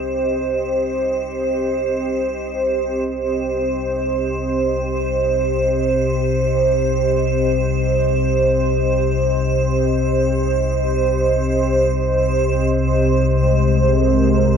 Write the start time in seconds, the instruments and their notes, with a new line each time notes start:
Already playing: synth drone C2 C3, analog synth pad C4 G4 C5 D#5, ambient pad C5
13.09 analog synth pad C3
13.31 analog synth pad G#3
13.77 analog synth pad A#4